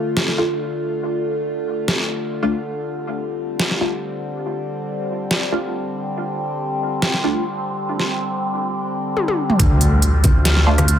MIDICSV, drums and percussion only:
0, 0, Header, 1, 2, 480
1, 0, Start_track
1, 0, Key_signature, -1, "minor"
1, 0, Tempo, 428571
1, 1148, Time_signature, 4, 2, 24, 8
1, 12309, End_track
2, 0, Start_track
2, 0, Title_t, "Drums"
2, 187, Note_on_c, 9, 38, 112
2, 299, Note_off_c, 9, 38, 0
2, 316, Note_on_c, 9, 38, 35
2, 428, Note_off_c, 9, 38, 0
2, 2107, Note_on_c, 9, 38, 113
2, 2219, Note_off_c, 9, 38, 0
2, 4027, Note_on_c, 9, 38, 110
2, 4139, Note_off_c, 9, 38, 0
2, 4157, Note_on_c, 9, 38, 35
2, 4269, Note_off_c, 9, 38, 0
2, 5946, Note_on_c, 9, 38, 101
2, 6058, Note_off_c, 9, 38, 0
2, 7866, Note_on_c, 9, 38, 102
2, 7978, Note_off_c, 9, 38, 0
2, 7996, Note_on_c, 9, 38, 35
2, 8108, Note_off_c, 9, 38, 0
2, 8955, Note_on_c, 9, 38, 33
2, 9067, Note_off_c, 9, 38, 0
2, 10267, Note_on_c, 9, 48, 56
2, 10379, Note_off_c, 9, 48, 0
2, 10395, Note_on_c, 9, 48, 58
2, 10507, Note_off_c, 9, 48, 0
2, 10636, Note_on_c, 9, 45, 76
2, 10746, Note_on_c, 9, 36, 120
2, 10747, Note_on_c, 9, 42, 83
2, 10748, Note_off_c, 9, 45, 0
2, 10858, Note_off_c, 9, 36, 0
2, 10859, Note_off_c, 9, 42, 0
2, 10986, Note_on_c, 9, 42, 55
2, 11098, Note_off_c, 9, 42, 0
2, 11226, Note_on_c, 9, 42, 81
2, 11338, Note_off_c, 9, 42, 0
2, 11466, Note_on_c, 9, 36, 101
2, 11466, Note_on_c, 9, 42, 53
2, 11470, Note_on_c, 9, 63, 84
2, 11578, Note_off_c, 9, 36, 0
2, 11578, Note_off_c, 9, 42, 0
2, 11582, Note_off_c, 9, 63, 0
2, 11707, Note_on_c, 9, 38, 116
2, 11707, Note_on_c, 9, 42, 81
2, 11819, Note_off_c, 9, 38, 0
2, 11819, Note_off_c, 9, 42, 0
2, 11836, Note_on_c, 9, 38, 40
2, 11948, Note_off_c, 9, 38, 0
2, 12075, Note_on_c, 9, 37, 63
2, 12075, Note_on_c, 9, 42, 55
2, 12082, Note_on_c, 9, 63, 95
2, 12187, Note_off_c, 9, 37, 0
2, 12187, Note_off_c, 9, 42, 0
2, 12187, Note_on_c, 9, 42, 84
2, 12194, Note_off_c, 9, 63, 0
2, 12299, Note_off_c, 9, 42, 0
2, 12309, End_track
0, 0, End_of_file